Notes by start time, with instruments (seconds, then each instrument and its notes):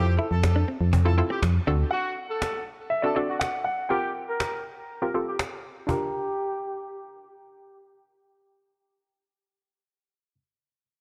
Already playing: fm bass F2, synth pluck C4 E4 F4 A4, horn section G4, grand piano C5
0.06 muted clean electric guitar stroke
0.17 clean electric guitar E4, grand piano A4
0.31 fm bass F2, horn section A4
0.43 muted clean electric guitar stroke, cajon bass, cajon slap
0.56 clean electric guitar D4
0.68 clean electric guitar C4
0.81 fm bass F2
0.93 clean electric guitar C4, cajon bass
1.05 synth pluck C4 E4 F4 A4, horn section A4
1.18 synth pluck C4 E4 F4 A4, muted clean electric guitar stroke
1.30 clean electric guitar C4, horn section G4
1.42 fm bass F2, cajon bass, cajon slap
1.67 fm bass D2, synth pluck C4 D4 F#4 A4, clean electric guitar D4
1.91 horn section F#4, grand piano F#5
2.29 horn section A4
2.42 cajon slap
2.90 grand piano E5
3.02 synth pluck C4 D4 F#4 A4, horn section A4, grand piano D5
3.15 synth pluck C4 D4 F#4 A4, grand piano D5
3.29 horn section F#4
3.39 grand piano F#5, cajon slap
3.64 grand piano F#5
3.89 synth pluck C4 F4 G4 A#4, horn section G4, grand piano G5
4.28 horn section A#4
4.40 cajon slap
5.02 synth pluck C4 F4 G4 A#4, horn section A#4
5.14 synth pluck C4 F4 G4 A4
5.27 horn section G4
5.39 cajon slap
5.87 synth pluck D4 F4 G4, horn section G4, grand piano A#5, cajon bass
5.91 synth pluck A#4